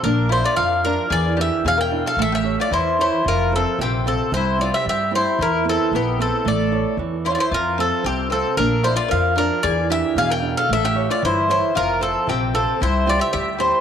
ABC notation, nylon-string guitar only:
X:1
M:2/4
L:1/8
Q:1/4=113
K:F
V:1 name="Nylon-string guitar"
B, [FBd] F, [FBd] | E, [DE^G] =B,, [DEG] | A, [EA^c] E, [EAc] | F, [FAc] C, [FAc] |
C, [CEG] G, [CEG] | E, [=B,E^G] B, [B,EG] | A, [EA^c] E, [EAc] | F, [FAc] C, [FAc] |
B, [FBd] F, [FBd] | E, [DE^G] =B,, [DEG] | A, [EA^c] E, [EAc] | F, [FAc] C, [FAc] |
C, [CEG] G, [CEG] |]